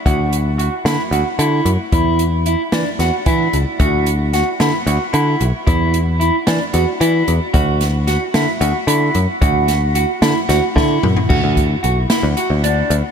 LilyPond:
<<
  \new Staff \with { instrumentName = "Clean electric guitar" } { \time 7/8 \key d \major \tempo 4 = 112 fis'4 fis'8 e'8 fis'8 e'4 | e'4 e'8 d'8 fis'8 e'4 | fis'4 fis'8 e'8 fis'8 e'4 | e'4 e'8 d'8 fis'8 e'4 |
fis'4 fis'8 e'8 fis'8 e'4 | fis'4 fis'8 e'8 fis'8 e'4 | fis'4 fis'8 e'8 fis'8 d'4 | }
  \new Staff \with { instrumentName = "Picked electric bass" } { \clef bass \time 7/8 \key d \major d,4. d16 r16 d,16 r16 d8 fis,16 r16 | e,4. e16 r16 e,16 r16 e8 cis,16 r16 | d,4. d16 r16 d,16 r16 d8 b,,16 r16 | e,4. e16 r16 e,16 r16 e8 e,16 r16 |
d,4. d16 r16 d,16 r16 d8 fis,16 r16 | d,4. d16 r16 d,16 r16 d8 fis,16 r16 | d,16 d,8. b,,8 r16 d,16 r16 d,8. d,16 r16 | }
  \new DrumStaff \with { instrumentName = "Drums" } \drummode { \time 7/8 <hh bd>8 hh8 hh8 <hh sn>8 hh8 hh8 hh8 | <hh bd>8 hh8 hh8 <hh sn>8 <hh sn>8 <hh bd>8 hh8 | <hh bd>8 hh8 <hh sn>8 <hh sn>8 hh8 hh8 hh8 | <hh bd>8 hh8 hh8 <hh sn>8 hh8 hh8 hh8 |
<hh bd>8 <hh sn>8 <hh sn>8 <hh sn>8 hh8 hh8 hh8 | <hh bd>8 <hh sn>8 hh8 <hh sn>8 <hh sn>8 <bd sn>8 toml16 tomfh16 | <cymc bd>8 <hh bd>8 hh8 <hh sn>8 hh8 hh8 hh8 | }
>>